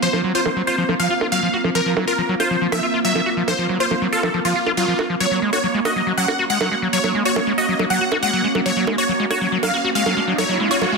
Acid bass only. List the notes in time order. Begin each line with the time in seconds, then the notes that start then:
0.02 F3
0.13 F3
0.24 F#3
0.35 F4
0.46 F3
0.56 F#3
0.67 F4
0.78 F3
0.89 F3
1.00 F3
1.10 F4
1.21 F4
1.32 F#3
1.43 F3
1.54 F#4
1.64 F3
1.75 F3
1.86 F3
1.97 F#3
2.07 F4
2.18 F3
2.29 F#3
2.40 F4
2.51 F3
2.61 F3
2.72 F3
2.83 F4
2.94 F4
3.05 F#3
3.15 F3
3.26 F#4
3.37 F3
3.48 F3
3.59 F3
3.69 F#3
3.80 F4
3.91 F3
4.02 F#3
4.13 F4
4.23 F3
4.34 F3
4.45 F3
4.56 F4
4.67 F4
4.77 F#3
4.88 F3
4.99 F#4
5.10 F3
5.20 F#3
5.31 F#3
5.42 G#3
5.53 F#4
5.64 F#3
5.74 G#3
5.85 F#4
5.96 F#3
6.07 F#3
6.18 F#3
6.28 F#4
6.39 F#4
6.50 G#3
6.61 F#3
6.72 G#3
6.82 F#3
6.93 F#3
7.04 F#3
7.15 G#3
7.25 F#4
7.36 F#3
7.47 G#3
7.58 F#4
7.69 F#3
7.79 F#3
7.90 F#3
8.01 F#4
8.12 F#4
8.23 G#3
8.33 F#3
8.44 G#3
8.55 F#3
8.66 F#3
8.77 F#3
8.87 G#3
8.98 F#4
9.09 F#3
9.20 G#3
9.30 F#4
9.41 F#3
9.52 F#3
9.63 F#3
9.74 F#4
9.84 F#4
9.95 G#3
10.06 F#3
10.17 G#3
10.28 F#3
10.38 F#3
10.49 F#3
10.60 G#3
10.71 F#4
10.82 F#3
10.92 G#3